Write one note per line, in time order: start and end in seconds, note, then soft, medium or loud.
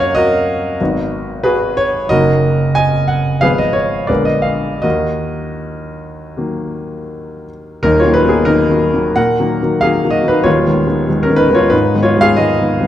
0.00 0.76 F#2 medium
0.00 0.76 F#3 soft
0.00 0.76 A#3 soft
0.00 0.77 D#4 soft
0.00 0.16 A#4 medium
0.00 0.16 C#5 medium
0.00 0.15 D#5 medium
0.00 0.82 F5 loud
0.00 0.82 F#5 loud
0.15 1.41 F#4 medium
0.15 1.41 A#4 medium
0.15 1.44 D#5 loud
0.81 2.07 G#1 medium
0.81 2.06 F#3 soft
0.81 2.07 B3 soft
0.81 2.07 D#4 soft
1.44 1.75 F#4 medium
1.44 1.75 G#4 medium
1.44 1.76 B4 medium
1.77 2.10 C#5 medium
2.09 3.39 F#1 medium
2.09 3.39 F#3 soft
2.09 3.39 A#3 soft
2.09 3.40 D#4 soft
2.09 2.73 F#4 medium
2.09 2.73 A#4 medium
2.09 2.74 D#5 loud
2.75 3.07 D#5 medium
2.75 3.09 G#5 loud
3.08 3.41 F#5 medium
3.41 4.07 G#1 medium
3.41 4.05 F3 soft
3.41 4.06 G#3 soft
3.41 4.06 B3 soft
3.41 3.57 G#4 medium
3.41 3.57 B4 medium
3.41 3.58 F5 medium
3.58 3.75 D#5 medium
3.73 4.08 C#5 medium
4.07 4.82 A#1 medium
4.07 4.80 D3 soft
4.07 4.80 G#3 soft
4.07 4.80 B3 soft
4.07 4.25 A#4 medium
4.07 4.25 B4 medium
4.07 4.26 D5 medium
4.25 4.44 D#5 medium
4.42 4.82 F5 medium
4.82 7.79 D#2 medium
4.82 7.44 F#4 medium
4.82 7.44 A#4 medium
4.82 7.48 D#5 medium
6.37 7.79 D#3 soft
6.37 7.80 F#3 soft
6.37 7.80 A#3 soft
7.83 8.04 D#1 medium
7.83 8.04 D#2 medium
7.83 7.99 D#4 medium
7.83 7.99 A#4 loud
8.00 8.15 F4 medium
8.00 8.15 C#5 medium
8.05 8.23 D#3 soft
8.05 8.24 F#3 soft
8.05 8.24 A#3 soft
8.14 8.30 D#4 medium
8.14 8.30 B4 medium
8.25 8.45 D#3 soft
8.25 8.45 F#3 soft
8.25 8.45 A#3 soft
8.25 8.46 G#4 medium
8.30 8.45 B3 medium
8.45 8.67 D#3 soft
8.45 8.68 F#3 soft
8.45 8.68 A#3 medium
8.45 9.12 D#4 medium
8.45 9.15 A#4 medium
8.69 8.91 D#3 soft
8.69 8.91 F#3 soft
8.69 8.91 A#3 soft
8.93 9.14 D#3 soft
8.93 9.15 F#3 soft
8.93 9.15 A#3 soft
9.16 9.38 A#2 medium
9.16 9.77 A#4 medium
9.16 9.81 F#5 medium
9.39 9.58 D#3 soft
9.39 9.59 F#3 soft
9.39 9.59 A#3 medium
9.62 9.81 D#3 soft
9.62 9.81 F#3 soft
9.62 9.81 A#3 soft
9.81 10.01 D#3 soft
9.81 10.02 F#3 soft
9.81 10.02 A#3 soft
9.81 10.12 G#4 medium
9.81 10.13 F5 medium
10.04 10.22 D#3 soft
10.04 10.23 F#3 soft
10.04 10.22 A#3 soft
10.11 10.27 F#4 medium
10.11 10.28 D#5 medium
10.23 10.43 D#3 soft
10.23 10.43 F#3 soft
10.23 10.43 A#3 soft
10.28 10.44 D#4 medium
10.28 10.45 B4 medium
10.44 10.65 D#1 medium
10.44 10.66 D#2 medium
10.44 11.20 F4 medium
10.44 11.24 C#5 medium
10.66 10.85 D#3 soft
10.66 10.85 G#3 soft
10.66 10.85 B3 soft
10.87 11.06 D#3 soft
10.87 11.06 G#3 soft
10.87 11.06 B3 medium
11.08 11.27 D#3 soft
11.08 11.28 G#3 soft
11.08 11.28 B3 medium
11.23 11.39 C#4 medium
11.23 11.40 A#4 medium
11.29 11.47 D#3 soft
11.29 11.48 G#3 soft
11.29 11.48 B3 soft
11.36 11.54 D#4 medium
11.36 11.54 B4 loud
11.49 11.69 D#3 soft
11.49 11.69 G#3 soft
11.49 11.69 B3 soft
11.55 11.71 F4 medium
11.55 11.72 C#5 medium
11.70 11.93 G#2 medium
11.70 12.02 D#4 medium
11.70 12.04 B4 medium
11.94 12.14 D#3 soft
11.94 12.14 G#3 soft
11.94 12.15 B3 medium
12.03 12.20 F4 medium
12.03 12.20 C#5 medium
12.17 12.36 D#3 soft
12.17 12.36 G#3 soft
12.17 12.36 B3 soft
12.21 12.36 G#4 medium
12.21 12.38 F5 loud
12.36 12.57 D#3 soft
12.36 12.58 G#3 soft
12.36 12.58 B3 soft
12.36 12.87 G#4 medium
12.36 12.87 D#5 medium
12.59 12.78 D#3 soft
12.59 12.79 G#3 soft
12.59 12.79 B3 soft
12.80 12.87 D#3 soft
12.80 12.87 G#3 soft
12.80 12.87 B3 soft